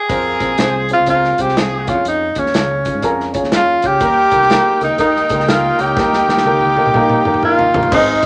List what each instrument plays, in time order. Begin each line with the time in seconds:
Already playing: tenor saxophone G#4
0.09 fingered electric bass F2, horn section F3 C4 A#4, upright piano C4 F4 G#4 C5, kick, closed hi-hat
0.40 fingered electric bass A#1, upright piano C4 F4 G#4 C5, kick, closed hi-hat
0.58 fingered electric bass C2, horn section G#3 F4 C5, upright piano C4 F4 G#4 C5, snare, closed hi-hat
0.89 horn section F3 C4 G#4, upright piano C4 F4 G#4 C5, closed hi-hat
0.93 tenor saxophone F4
0.99 fingered electric bass C#2
1.06 horn section A#3 G4 A#4, upright piano C4 F4 G#4 C5, tenor saxophone F4, kick, closed hi-hat
1.24 snare
1.38 fingered electric bass C2, horn section G#3 F4 C5, upright piano C4 F4 G#4 C5, tenor saxophone G4, kick, closed hi-hat
1.49 snare
1.55 horn section F3 C#4 G#4, upright piano C4 F4 G#4 C5, tenor saxophone G#4, snare, closed hi-hat
1.87 fingered electric bass F2, upright piano C#4 E4 G#4 C#5, tenor saxophone F4, kick, closed hi-hat
1.93 upright piano F4
2.05 fingered electric bass F2, tenor saxophone D#4, closed hi-hat
2.35 fingered electric bass D#2, upright piano C#4 F4 G#4 C#5, tenor saxophone C#4, kick, closed hi-hat
2.46 snare
2.54 fingered electric bass C#2, upright piano C#4 F4 G#4 C#5, snare, closed hi-hat
2.85 upright piano C#4 F4 G#4 C#5, kick, closed hi-hat
2.94 fingered electric bass G#2
3.02 fingered electric bass F2, upright piano C#4 F4 G#4 A#4, kick, closed hi-hat
3.20 snare
3.33 upright piano C#4 F4 G#4 C#5, kick, closed hi-hat
3.43 fingered electric bass D#2, snare
3.52 upright piano C#4 F4 G#4, glockenspiel F6, snare, closed hi-hat
3.56 tenor saxophone F4
3.82 fingered electric bass C#2, upright piano C#4 F4 G#4 C#5, glockenspiel G6, kick, closed hi-hat
3.87 tenor saxophone G4
4.00 fingered electric bass D#2, upright piano D#3 A#3 D#4 G4 A#4, horn section G3 D#4 A#4, violin section D#4 A#4 G5, kick, closed hi-hat
4.31 fingered electric bass C2, upright piano A#3 D#4 G4 A#4, kick, closed hi-hat
4.42 snare
4.49 upright piano A#3 D#4 G4 A#4, horn section C4 G#4 C5, snare, closed hi-hat
4.81 fingered electric bass C#2, horn section G3 D#4 A#4, upright piano A#3 D#4 G4 A#4, tenor saxophone D#4, glockenspiel D#6, closed hi-hat
4.90 fingered electric bass D#2
4.98 horn section D#3 A#3 G4, upright piano A#3 D#4 G4 A#4, tenor saxophone D#4, glockenspiel D#6, kick, closed hi-hat
5.16 snare
5.29 fingered electric bass C#2, upright piano A#3 D#4 G4 A#4, horn section C4 G#4 C5, kick, closed hi-hat
5.40 snare
5.47 horn section G3 D#4 A#4, upright piano A#3 D#4 G4 A#4, tenor saxophone F4, glockenspiel F6, snare, closed hi-hat
5.79 fingered electric bass C#2, upright piano A#3 D#4 G4 C#5, tenor saxophone G4, glockenspiel G6, closed hi-hat
5.97 fingered electric bass D#2, upright piano D#3 A#3 D#4 G4 A#4, kick, snare
6.13 snare
6.28 fingered electric bass D#2, upright piano A#3 D#4 G4 A#4, snare
6.38 snare
6.45 fingered electric bass C#2, upright piano A#3 D#4 G4 A#4, high tom
6.61 high tom
6.77 upright piano A#3 D#4 G4 A#4, high tom
6.86 fingered electric bass C2, mid tom
6.94 fingered electric bass A#1, upright piano A#3 D#4 G4 A#4, kick, mid tom
7.09 mid tom
7.25 fingered electric bass D#3, upright piano A#3 D#4 G4 A#4, mid tom
7.34 mid tom
7.43 upright piano A#3 D#4 G4 A#4, tenor saxophone F4, glockenspiel F6, mid tom
7.59 floor tom
7.74 fingered electric bass G1, upright piano A#3 D#4 G4 A#4, floor tom
7.83 floor tom
7.91 fingered electric bass G#1, upright piano G#2 C4 D#4 G#4 C5 D#5, tenor saxophone D#4, violin section C5 C6, glockenspiel D#6, kick, crash
8.23 upright piano C4, glockenspiel D#6, kick, closed hi-hat